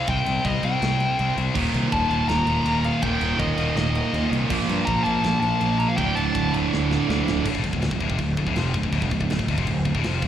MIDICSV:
0, 0, Header, 1, 5, 480
1, 0, Start_track
1, 0, Tempo, 368777
1, 104, Time_signature, 4, 2, 24, 8
1, 13378, End_track
2, 0, Start_track
2, 0, Title_t, "Lead electric guitar"
2, 0, Program_c, 0, 29
2, 120, Note_on_c, 0, 79, 99
2, 588, Note_on_c, 0, 75, 89
2, 606, Note_off_c, 0, 79, 0
2, 833, Note_off_c, 0, 75, 0
2, 838, Note_on_c, 0, 79, 85
2, 1739, Note_off_c, 0, 79, 0
2, 2508, Note_on_c, 0, 81, 97
2, 2716, Note_off_c, 0, 81, 0
2, 2731, Note_on_c, 0, 81, 108
2, 2968, Note_off_c, 0, 81, 0
2, 2974, Note_on_c, 0, 82, 109
2, 3711, Note_on_c, 0, 77, 85
2, 3720, Note_off_c, 0, 82, 0
2, 3934, Note_off_c, 0, 77, 0
2, 3934, Note_on_c, 0, 79, 108
2, 4417, Note_off_c, 0, 79, 0
2, 4417, Note_on_c, 0, 75, 79
2, 4865, Note_off_c, 0, 75, 0
2, 4905, Note_on_c, 0, 75, 84
2, 5572, Note_off_c, 0, 75, 0
2, 6316, Note_on_c, 0, 82, 104
2, 6549, Note_off_c, 0, 82, 0
2, 6554, Note_on_c, 0, 81, 106
2, 7017, Note_off_c, 0, 81, 0
2, 7032, Note_on_c, 0, 81, 97
2, 7490, Note_off_c, 0, 81, 0
2, 7534, Note_on_c, 0, 82, 92
2, 7655, Note_on_c, 0, 77, 92
2, 7659, Note_off_c, 0, 82, 0
2, 7765, Note_off_c, 0, 77, 0
2, 7770, Note_on_c, 0, 79, 95
2, 8010, Note_off_c, 0, 79, 0
2, 8010, Note_on_c, 0, 81, 89
2, 8493, Note_off_c, 0, 81, 0
2, 13378, End_track
3, 0, Start_track
3, 0, Title_t, "Distorted electric guitar"
3, 0, Program_c, 1, 30
3, 98, Note_on_c, 1, 48, 83
3, 118, Note_on_c, 1, 55, 80
3, 137, Note_on_c, 1, 60, 85
3, 795, Note_off_c, 1, 60, 0
3, 806, Note_off_c, 1, 48, 0
3, 810, Note_on_c, 1, 60, 94
3, 821, Note_off_c, 1, 55, 0
3, 826, Note_on_c, 1, 55, 87
3, 840, Note_on_c, 1, 48, 78
3, 1506, Note_off_c, 1, 48, 0
3, 1521, Note_on_c, 1, 48, 78
3, 1523, Note_off_c, 1, 60, 0
3, 1539, Note_off_c, 1, 55, 0
3, 1545, Note_on_c, 1, 55, 85
3, 1556, Note_on_c, 1, 60, 88
3, 1998, Note_off_c, 1, 48, 0
3, 2015, Note_on_c, 1, 39, 78
3, 2016, Note_off_c, 1, 60, 0
3, 2027, Note_off_c, 1, 55, 0
3, 2032, Note_on_c, 1, 46, 83
3, 2044, Note_on_c, 1, 51, 78
3, 2730, Note_off_c, 1, 51, 0
3, 2733, Note_off_c, 1, 46, 0
3, 2736, Note_on_c, 1, 51, 99
3, 2753, Note_on_c, 1, 46, 72
3, 2759, Note_off_c, 1, 39, 0
3, 2765, Note_on_c, 1, 39, 74
3, 3436, Note_off_c, 1, 39, 0
3, 3445, Note_off_c, 1, 51, 0
3, 3452, Note_on_c, 1, 39, 81
3, 3453, Note_off_c, 1, 46, 0
3, 3473, Note_on_c, 1, 46, 85
3, 3487, Note_on_c, 1, 51, 100
3, 3913, Note_off_c, 1, 39, 0
3, 3929, Note_on_c, 1, 39, 75
3, 3933, Note_off_c, 1, 46, 0
3, 3940, Note_off_c, 1, 51, 0
3, 3949, Note_on_c, 1, 46, 83
3, 3961, Note_on_c, 1, 51, 86
3, 4639, Note_off_c, 1, 51, 0
3, 4640, Note_off_c, 1, 39, 0
3, 4650, Note_off_c, 1, 46, 0
3, 4655, Note_on_c, 1, 51, 102
3, 4672, Note_on_c, 1, 46, 87
3, 4682, Note_on_c, 1, 39, 72
3, 5357, Note_off_c, 1, 39, 0
3, 5363, Note_off_c, 1, 51, 0
3, 5371, Note_off_c, 1, 46, 0
3, 5373, Note_on_c, 1, 39, 84
3, 5395, Note_on_c, 1, 46, 83
3, 5407, Note_on_c, 1, 51, 88
3, 5841, Note_off_c, 1, 46, 0
3, 5842, Note_off_c, 1, 39, 0
3, 5857, Note_on_c, 1, 46, 84
3, 5859, Note_off_c, 1, 51, 0
3, 5872, Note_on_c, 1, 53, 89
3, 5886, Note_on_c, 1, 58, 83
3, 6543, Note_off_c, 1, 58, 0
3, 6559, Note_on_c, 1, 58, 92
3, 6563, Note_off_c, 1, 46, 0
3, 6574, Note_off_c, 1, 53, 0
3, 6579, Note_on_c, 1, 53, 86
3, 6599, Note_on_c, 1, 46, 73
3, 7264, Note_off_c, 1, 46, 0
3, 7274, Note_off_c, 1, 58, 0
3, 7280, Note_on_c, 1, 46, 88
3, 7295, Note_off_c, 1, 53, 0
3, 7300, Note_on_c, 1, 53, 103
3, 7317, Note_on_c, 1, 58, 103
3, 7752, Note_off_c, 1, 46, 0
3, 7757, Note_on_c, 1, 38, 86
3, 7773, Note_off_c, 1, 53, 0
3, 7773, Note_off_c, 1, 58, 0
3, 7779, Note_on_c, 1, 45, 83
3, 7790, Note_on_c, 1, 50, 90
3, 8467, Note_off_c, 1, 50, 0
3, 8472, Note_off_c, 1, 38, 0
3, 8483, Note_off_c, 1, 45, 0
3, 8483, Note_on_c, 1, 50, 87
3, 8503, Note_on_c, 1, 45, 77
3, 8514, Note_on_c, 1, 38, 79
3, 9191, Note_off_c, 1, 38, 0
3, 9195, Note_off_c, 1, 50, 0
3, 9205, Note_off_c, 1, 45, 0
3, 9206, Note_on_c, 1, 38, 77
3, 9226, Note_on_c, 1, 45, 85
3, 9242, Note_on_c, 1, 50, 97
3, 9672, Note_off_c, 1, 38, 0
3, 9682, Note_off_c, 1, 45, 0
3, 9687, Note_on_c, 1, 38, 74
3, 9695, Note_off_c, 1, 50, 0
3, 9698, Note_on_c, 1, 45, 80
3, 9805, Note_off_c, 1, 38, 0
3, 9810, Note_off_c, 1, 45, 0
3, 9819, Note_on_c, 1, 40, 98
3, 9826, Note_on_c, 1, 47, 100
3, 9930, Note_off_c, 1, 40, 0
3, 9934, Note_off_c, 1, 47, 0
3, 9936, Note_on_c, 1, 38, 72
3, 9941, Note_on_c, 1, 45, 73
3, 10040, Note_off_c, 1, 38, 0
3, 10047, Note_off_c, 1, 45, 0
3, 10056, Note_on_c, 1, 38, 70
3, 10063, Note_on_c, 1, 45, 69
3, 10158, Note_off_c, 1, 38, 0
3, 10165, Note_off_c, 1, 45, 0
3, 10173, Note_on_c, 1, 38, 70
3, 10180, Note_on_c, 1, 45, 70
3, 10295, Note_off_c, 1, 38, 0
3, 10299, Note_off_c, 1, 45, 0
3, 10311, Note_on_c, 1, 38, 68
3, 10316, Note_on_c, 1, 45, 72
3, 10403, Note_off_c, 1, 38, 0
3, 10409, Note_off_c, 1, 45, 0
3, 10419, Note_on_c, 1, 38, 95
3, 10425, Note_on_c, 1, 45, 99
3, 10531, Note_off_c, 1, 38, 0
3, 10534, Note_off_c, 1, 45, 0
3, 10537, Note_on_c, 1, 41, 88
3, 10549, Note_on_c, 1, 48, 114
3, 10650, Note_off_c, 1, 41, 0
3, 10656, Note_off_c, 1, 48, 0
3, 10665, Note_on_c, 1, 38, 56
3, 10666, Note_on_c, 1, 45, 70
3, 10853, Note_off_c, 1, 38, 0
3, 10854, Note_off_c, 1, 45, 0
3, 10910, Note_on_c, 1, 38, 68
3, 10917, Note_on_c, 1, 45, 77
3, 11009, Note_off_c, 1, 38, 0
3, 11012, Note_off_c, 1, 45, 0
3, 11024, Note_on_c, 1, 38, 77
3, 11028, Note_on_c, 1, 45, 93
3, 11130, Note_off_c, 1, 38, 0
3, 11135, Note_off_c, 1, 45, 0
3, 11136, Note_on_c, 1, 41, 86
3, 11146, Note_on_c, 1, 48, 88
3, 11156, Note_on_c, 1, 53, 108
3, 11370, Note_off_c, 1, 41, 0
3, 11375, Note_off_c, 1, 48, 0
3, 11380, Note_off_c, 1, 53, 0
3, 11391, Note_on_c, 1, 38, 63
3, 11391, Note_on_c, 1, 45, 65
3, 11483, Note_off_c, 1, 38, 0
3, 11495, Note_off_c, 1, 45, 0
3, 11499, Note_on_c, 1, 38, 74
3, 11510, Note_on_c, 1, 45, 85
3, 11605, Note_off_c, 1, 38, 0
3, 11614, Note_off_c, 1, 45, 0
3, 11621, Note_on_c, 1, 38, 86
3, 11630, Note_on_c, 1, 45, 97
3, 11733, Note_off_c, 1, 38, 0
3, 11737, Note_off_c, 1, 45, 0
3, 11742, Note_on_c, 1, 40, 101
3, 11753, Note_on_c, 1, 47, 96
3, 11849, Note_off_c, 1, 40, 0
3, 11854, Note_off_c, 1, 47, 0
3, 11854, Note_on_c, 1, 38, 65
3, 11859, Note_on_c, 1, 45, 69
3, 11964, Note_off_c, 1, 38, 0
3, 11970, Note_off_c, 1, 45, 0
3, 11980, Note_on_c, 1, 38, 62
3, 11986, Note_on_c, 1, 45, 82
3, 12099, Note_off_c, 1, 38, 0
3, 12102, Note_off_c, 1, 45, 0
3, 12116, Note_on_c, 1, 38, 66
3, 12123, Note_on_c, 1, 45, 74
3, 12202, Note_off_c, 1, 38, 0
3, 12208, Note_off_c, 1, 45, 0
3, 12218, Note_on_c, 1, 38, 76
3, 12224, Note_on_c, 1, 45, 73
3, 12324, Note_off_c, 1, 38, 0
3, 12331, Note_off_c, 1, 45, 0
3, 12340, Note_on_c, 1, 38, 107
3, 12347, Note_on_c, 1, 45, 108
3, 12453, Note_off_c, 1, 38, 0
3, 12456, Note_off_c, 1, 45, 0
3, 12471, Note_on_c, 1, 41, 102
3, 12473, Note_on_c, 1, 48, 106
3, 12578, Note_off_c, 1, 41, 0
3, 12579, Note_off_c, 1, 48, 0
3, 12589, Note_on_c, 1, 38, 70
3, 12595, Note_on_c, 1, 45, 77
3, 12777, Note_off_c, 1, 38, 0
3, 12780, Note_off_c, 1, 45, 0
3, 12820, Note_on_c, 1, 38, 68
3, 12825, Note_on_c, 1, 45, 67
3, 12929, Note_off_c, 1, 38, 0
3, 12933, Note_off_c, 1, 45, 0
3, 12944, Note_on_c, 1, 38, 88
3, 12949, Note_on_c, 1, 45, 110
3, 13055, Note_off_c, 1, 38, 0
3, 13058, Note_off_c, 1, 45, 0
3, 13064, Note_on_c, 1, 41, 102
3, 13072, Note_on_c, 1, 48, 113
3, 13080, Note_on_c, 1, 53, 109
3, 13296, Note_off_c, 1, 41, 0
3, 13300, Note_off_c, 1, 48, 0
3, 13304, Note_off_c, 1, 53, 0
3, 13309, Note_on_c, 1, 38, 69
3, 13316, Note_on_c, 1, 45, 65
3, 13378, Note_off_c, 1, 38, 0
3, 13378, Note_off_c, 1, 45, 0
3, 13378, End_track
4, 0, Start_track
4, 0, Title_t, "Picked electric bass"
4, 0, Program_c, 2, 34
4, 105, Note_on_c, 2, 36, 96
4, 255, Note_off_c, 2, 36, 0
4, 353, Note_on_c, 2, 36, 91
4, 501, Note_off_c, 2, 36, 0
4, 587, Note_on_c, 2, 36, 106
4, 736, Note_off_c, 2, 36, 0
4, 826, Note_on_c, 2, 36, 85
4, 975, Note_off_c, 2, 36, 0
4, 1074, Note_on_c, 2, 36, 101
4, 1371, Note_off_c, 2, 36, 0
4, 1555, Note_on_c, 2, 36, 89
4, 1702, Note_off_c, 2, 36, 0
4, 1784, Note_on_c, 2, 36, 105
4, 1934, Note_off_c, 2, 36, 0
4, 2023, Note_on_c, 2, 27, 87
4, 2173, Note_off_c, 2, 27, 0
4, 2269, Note_on_c, 2, 36, 90
4, 2418, Note_off_c, 2, 36, 0
4, 2504, Note_on_c, 2, 27, 105
4, 2654, Note_off_c, 2, 27, 0
4, 2745, Note_on_c, 2, 27, 92
4, 2894, Note_off_c, 2, 27, 0
4, 2984, Note_on_c, 2, 27, 99
4, 3134, Note_off_c, 2, 27, 0
4, 3220, Note_on_c, 2, 27, 97
4, 3371, Note_off_c, 2, 27, 0
4, 3458, Note_on_c, 2, 27, 100
4, 3760, Note_off_c, 2, 27, 0
4, 3945, Note_on_c, 2, 27, 86
4, 4095, Note_off_c, 2, 27, 0
4, 4185, Note_on_c, 2, 27, 89
4, 4334, Note_off_c, 2, 27, 0
4, 4424, Note_on_c, 2, 27, 105
4, 4573, Note_off_c, 2, 27, 0
4, 4667, Note_on_c, 2, 27, 82
4, 4816, Note_off_c, 2, 27, 0
4, 4899, Note_on_c, 2, 27, 101
4, 5200, Note_off_c, 2, 27, 0
4, 5381, Note_on_c, 2, 39, 78
4, 5531, Note_off_c, 2, 39, 0
4, 5619, Note_on_c, 2, 36, 97
4, 5769, Note_off_c, 2, 36, 0
4, 5864, Note_on_c, 2, 34, 93
4, 6013, Note_off_c, 2, 34, 0
4, 6102, Note_on_c, 2, 43, 82
4, 6251, Note_off_c, 2, 43, 0
4, 6343, Note_on_c, 2, 34, 95
4, 6492, Note_off_c, 2, 34, 0
4, 6594, Note_on_c, 2, 34, 85
4, 6739, Note_off_c, 2, 34, 0
4, 6831, Note_on_c, 2, 34, 105
4, 6977, Note_off_c, 2, 34, 0
4, 7065, Note_on_c, 2, 34, 104
4, 7213, Note_off_c, 2, 34, 0
4, 7311, Note_on_c, 2, 34, 86
4, 7607, Note_off_c, 2, 34, 0
4, 7786, Note_on_c, 2, 26, 102
4, 7934, Note_off_c, 2, 26, 0
4, 8030, Note_on_c, 2, 26, 95
4, 8176, Note_off_c, 2, 26, 0
4, 8267, Note_on_c, 2, 26, 102
4, 8414, Note_off_c, 2, 26, 0
4, 8511, Note_on_c, 2, 26, 91
4, 8656, Note_off_c, 2, 26, 0
4, 8751, Note_on_c, 2, 26, 91
4, 9047, Note_off_c, 2, 26, 0
4, 9237, Note_on_c, 2, 38, 99
4, 9380, Note_off_c, 2, 38, 0
4, 9477, Note_on_c, 2, 26, 99
4, 9621, Note_off_c, 2, 26, 0
4, 9704, Note_on_c, 2, 26, 98
4, 9812, Note_off_c, 2, 26, 0
4, 9826, Note_on_c, 2, 28, 92
4, 9933, Note_off_c, 2, 28, 0
4, 9945, Note_on_c, 2, 26, 84
4, 10053, Note_off_c, 2, 26, 0
4, 10065, Note_on_c, 2, 26, 74
4, 10173, Note_off_c, 2, 26, 0
4, 10190, Note_on_c, 2, 26, 84
4, 10295, Note_off_c, 2, 26, 0
4, 10302, Note_on_c, 2, 26, 80
4, 10411, Note_off_c, 2, 26, 0
4, 10421, Note_on_c, 2, 26, 99
4, 10531, Note_off_c, 2, 26, 0
4, 10540, Note_on_c, 2, 29, 102
4, 10650, Note_off_c, 2, 29, 0
4, 10663, Note_on_c, 2, 26, 86
4, 10883, Note_off_c, 2, 26, 0
4, 10902, Note_on_c, 2, 26, 82
4, 11011, Note_off_c, 2, 26, 0
4, 11023, Note_on_c, 2, 26, 103
4, 11132, Note_off_c, 2, 26, 0
4, 11152, Note_on_c, 2, 29, 89
4, 11369, Note_off_c, 2, 29, 0
4, 11379, Note_on_c, 2, 26, 89
4, 11490, Note_off_c, 2, 26, 0
4, 11498, Note_on_c, 2, 26, 85
4, 11610, Note_off_c, 2, 26, 0
4, 11623, Note_on_c, 2, 26, 93
4, 11732, Note_off_c, 2, 26, 0
4, 11743, Note_on_c, 2, 28, 94
4, 11853, Note_off_c, 2, 28, 0
4, 11870, Note_on_c, 2, 26, 83
4, 11977, Note_off_c, 2, 26, 0
4, 11986, Note_on_c, 2, 26, 81
4, 12094, Note_off_c, 2, 26, 0
4, 12121, Note_on_c, 2, 26, 98
4, 12217, Note_off_c, 2, 26, 0
4, 12225, Note_on_c, 2, 26, 88
4, 12334, Note_off_c, 2, 26, 0
4, 12351, Note_on_c, 2, 26, 102
4, 12457, Note_off_c, 2, 26, 0
4, 12473, Note_on_c, 2, 29, 101
4, 12578, Note_off_c, 2, 29, 0
4, 12588, Note_on_c, 2, 26, 81
4, 12808, Note_off_c, 2, 26, 0
4, 12831, Note_on_c, 2, 26, 88
4, 12938, Note_off_c, 2, 26, 0
4, 12949, Note_on_c, 2, 26, 105
4, 13057, Note_off_c, 2, 26, 0
4, 13073, Note_on_c, 2, 29, 101
4, 13291, Note_off_c, 2, 29, 0
4, 13312, Note_on_c, 2, 26, 92
4, 13378, Note_off_c, 2, 26, 0
4, 13378, End_track
5, 0, Start_track
5, 0, Title_t, "Drums"
5, 97, Note_on_c, 9, 51, 111
5, 102, Note_on_c, 9, 36, 127
5, 227, Note_off_c, 9, 51, 0
5, 233, Note_off_c, 9, 36, 0
5, 342, Note_on_c, 9, 51, 91
5, 472, Note_off_c, 9, 51, 0
5, 581, Note_on_c, 9, 51, 120
5, 583, Note_on_c, 9, 36, 86
5, 711, Note_off_c, 9, 51, 0
5, 713, Note_off_c, 9, 36, 0
5, 820, Note_on_c, 9, 51, 86
5, 950, Note_off_c, 9, 51, 0
5, 1067, Note_on_c, 9, 51, 109
5, 1078, Note_on_c, 9, 38, 118
5, 1197, Note_off_c, 9, 51, 0
5, 1209, Note_off_c, 9, 38, 0
5, 1303, Note_on_c, 9, 51, 68
5, 1433, Note_off_c, 9, 51, 0
5, 1549, Note_on_c, 9, 51, 113
5, 1679, Note_off_c, 9, 51, 0
5, 1791, Note_on_c, 9, 51, 86
5, 1921, Note_off_c, 9, 51, 0
5, 2020, Note_on_c, 9, 49, 119
5, 2024, Note_on_c, 9, 36, 114
5, 2151, Note_off_c, 9, 49, 0
5, 2154, Note_off_c, 9, 36, 0
5, 2267, Note_on_c, 9, 51, 80
5, 2397, Note_off_c, 9, 51, 0
5, 2501, Note_on_c, 9, 51, 108
5, 2503, Note_on_c, 9, 36, 103
5, 2631, Note_off_c, 9, 51, 0
5, 2633, Note_off_c, 9, 36, 0
5, 2742, Note_on_c, 9, 51, 66
5, 2872, Note_off_c, 9, 51, 0
5, 2978, Note_on_c, 9, 51, 103
5, 2990, Note_on_c, 9, 38, 122
5, 3108, Note_off_c, 9, 51, 0
5, 3120, Note_off_c, 9, 38, 0
5, 3213, Note_on_c, 9, 51, 77
5, 3343, Note_off_c, 9, 51, 0
5, 3457, Note_on_c, 9, 51, 121
5, 3587, Note_off_c, 9, 51, 0
5, 3700, Note_on_c, 9, 51, 80
5, 3830, Note_off_c, 9, 51, 0
5, 3934, Note_on_c, 9, 51, 107
5, 3941, Note_on_c, 9, 36, 127
5, 4064, Note_off_c, 9, 51, 0
5, 4071, Note_off_c, 9, 36, 0
5, 4178, Note_on_c, 9, 51, 91
5, 4308, Note_off_c, 9, 51, 0
5, 4417, Note_on_c, 9, 51, 113
5, 4420, Note_on_c, 9, 36, 97
5, 4548, Note_off_c, 9, 51, 0
5, 4551, Note_off_c, 9, 36, 0
5, 4655, Note_on_c, 9, 51, 89
5, 4785, Note_off_c, 9, 51, 0
5, 4903, Note_on_c, 9, 51, 114
5, 4914, Note_on_c, 9, 38, 122
5, 5033, Note_off_c, 9, 51, 0
5, 5044, Note_off_c, 9, 38, 0
5, 5144, Note_on_c, 9, 51, 84
5, 5274, Note_off_c, 9, 51, 0
5, 5390, Note_on_c, 9, 51, 117
5, 5520, Note_off_c, 9, 51, 0
5, 5633, Note_on_c, 9, 51, 84
5, 5763, Note_off_c, 9, 51, 0
5, 5862, Note_on_c, 9, 36, 110
5, 5868, Note_on_c, 9, 49, 112
5, 5992, Note_off_c, 9, 36, 0
5, 5998, Note_off_c, 9, 49, 0
5, 6108, Note_on_c, 9, 51, 88
5, 6238, Note_off_c, 9, 51, 0
5, 6340, Note_on_c, 9, 36, 97
5, 6342, Note_on_c, 9, 51, 124
5, 6470, Note_off_c, 9, 36, 0
5, 6472, Note_off_c, 9, 51, 0
5, 6583, Note_on_c, 9, 51, 76
5, 6713, Note_off_c, 9, 51, 0
5, 6817, Note_on_c, 9, 51, 108
5, 6829, Note_on_c, 9, 38, 118
5, 6948, Note_off_c, 9, 51, 0
5, 6959, Note_off_c, 9, 38, 0
5, 7059, Note_on_c, 9, 51, 64
5, 7189, Note_off_c, 9, 51, 0
5, 7299, Note_on_c, 9, 51, 108
5, 7429, Note_off_c, 9, 51, 0
5, 7545, Note_on_c, 9, 51, 84
5, 7675, Note_off_c, 9, 51, 0
5, 7782, Note_on_c, 9, 36, 113
5, 7785, Note_on_c, 9, 51, 109
5, 7912, Note_off_c, 9, 36, 0
5, 7916, Note_off_c, 9, 51, 0
5, 8026, Note_on_c, 9, 51, 91
5, 8156, Note_off_c, 9, 51, 0
5, 8265, Note_on_c, 9, 36, 108
5, 8274, Note_on_c, 9, 51, 127
5, 8395, Note_off_c, 9, 36, 0
5, 8404, Note_off_c, 9, 51, 0
5, 8514, Note_on_c, 9, 51, 82
5, 8644, Note_off_c, 9, 51, 0
5, 8767, Note_on_c, 9, 38, 66
5, 8897, Note_off_c, 9, 38, 0
5, 8998, Note_on_c, 9, 38, 64
5, 9129, Note_off_c, 9, 38, 0
5, 9245, Note_on_c, 9, 38, 106
5, 9376, Note_off_c, 9, 38, 0
5, 9479, Note_on_c, 9, 38, 110
5, 9609, Note_off_c, 9, 38, 0
5, 9703, Note_on_c, 9, 49, 89
5, 9703, Note_on_c, 9, 57, 117
5, 9704, Note_on_c, 9, 36, 118
5, 9825, Note_off_c, 9, 36, 0
5, 9825, Note_on_c, 9, 36, 87
5, 9833, Note_off_c, 9, 49, 0
5, 9833, Note_off_c, 9, 57, 0
5, 9943, Note_off_c, 9, 36, 0
5, 9943, Note_on_c, 9, 36, 91
5, 9946, Note_on_c, 9, 49, 73
5, 10061, Note_off_c, 9, 36, 0
5, 10061, Note_on_c, 9, 36, 90
5, 10077, Note_off_c, 9, 49, 0
5, 10177, Note_on_c, 9, 49, 82
5, 10189, Note_on_c, 9, 38, 115
5, 10192, Note_off_c, 9, 36, 0
5, 10298, Note_on_c, 9, 36, 92
5, 10307, Note_off_c, 9, 49, 0
5, 10319, Note_off_c, 9, 38, 0
5, 10416, Note_on_c, 9, 49, 55
5, 10419, Note_off_c, 9, 36, 0
5, 10419, Note_on_c, 9, 36, 85
5, 10537, Note_off_c, 9, 36, 0
5, 10537, Note_on_c, 9, 36, 91
5, 10546, Note_off_c, 9, 49, 0
5, 10652, Note_on_c, 9, 49, 80
5, 10658, Note_off_c, 9, 36, 0
5, 10658, Note_on_c, 9, 36, 93
5, 10782, Note_off_c, 9, 49, 0
5, 10788, Note_off_c, 9, 36, 0
5, 10898, Note_on_c, 9, 36, 92
5, 10898, Note_on_c, 9, 49, 53
5, 11019, Note_off_c, 9, 36, 0
5, 11019, Note_on_c, 9, 36, 81
5, 11028, Note_off_c, 9, 49, 0
5, 11137, Note_on_c, 9, 49, 91
5, 11149, Note_off_c, 9, 36, 0
5, 11149, Note_on_c, 9, 38, 124
5, 11267, Note_off_c, 9, 49, 0
5, 11279, Note_off_c, 9, 38, 0
5, 11374, Note_on_c, 9, 49, 69
5, 11379, Note_on_c, 9, 36, 109
5, 11498, Note_off_c, 9, 36, 0
5, 11498, Note_on_c, 9, 36, 92
5, 11504, Note_off_c, 9, 49, 0
5, 11614, Note_on_c, 9, 49, 88
5, 11618, Note_off_c, 9, 36, 0
5, 11618, Note_on_c, 9, 36, 90
5, 11740, Note_off_c, 9, 36, 0
5, 11740, Note_on_c, 9, 36, 90
5, 11744, Note_off_c, 9, 49, 0
5, 11863, Note_off_c, 9, 36, 0
5, 11863, Note_on_c, 9, 36, 91
5, 11863, Note_on_c, 9, 49, 66
5, 11983, Note_off_c, 9, 36, 0
5, 11983, Note_on_c, 9, 36, 78
5, 11993, Note_off_c, 9, 49, 0
5, 12105, Note_on_c, 9, 49, 95
5, 12113, Note_off_c, 9, 36, 0
5, 12117, Note_on_c, 9, 38, 127
5, 12225, Note_on_c, 9, 36, 90
5, 12235, Note_off_c, 9, 49, 0
5, 12247, Note_off_c, 9, 38, 0
5, 12346, Note_off_c, 9, 36, 0
5, 12346, Note_on_c, 9, 36, 87
5, 12348, Note_on_c, 9, 49, 71
5, 12466, Note_off_c, 9, 36, 0
5, 12466, Note_on_c, 9, 36, 93
5, 12478, Note_off_c, 9, 49, 0
5, 12587, Note_off_c, 9, 36, 0
5, 12587, Note_on_c, 9, 36, 98
5, 12588, Note_on_c, 9, 49, 92
5, 12717, Note_off_c, 9, 36, 0
5, 12718, Note_off_c, 9, 49, 0
5, 12825, Note_on_c, 9, 36, 84
5, 12827, Note_on_c, 9, 49, 69
5, 12947, Note_off_c, 9, 36, 0
5, 12947, Note_on_c, 9, 36, 91
5, 12957, Note_off_c, 9, 49, 0
5, 13064, Note_on_c, 9, 49, 90
5, 13075, Note_on_c, 9, 38, 127
5, 13077, Note_off_c, 9, 36, 0
5, 13194, Note_off_c, 9, 49, 0
5, 13206, Note_off_c, 9, 38, 0
5, 13307, Note_on_c, 9, 36, 111
5, 13307, Note_on_c, 9, 49, 70
5, 13378, Note_off_c, 9, 36, 0
5, 13378, Note_off_c, 9, 49, 0
5, 13378, End_track
0, 0, End_of_file